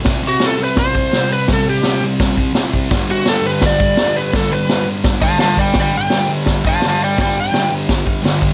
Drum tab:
HH |o-o-o-o-|o-o-o-o-|o-o-o-o-|o-o-o-o-|
SD |o-o-o-o-|o-o-o-o-|o-o-o-o-|o-o-o-o-|
BD |o---oo--|o---oo-o|o---oo--|o---oo-o|

HH |o-o-o-o-|o-o-o-o-|
SD |o-o-o-o-|o-o-o-o-|
BD |o---oo--|o---oo-o|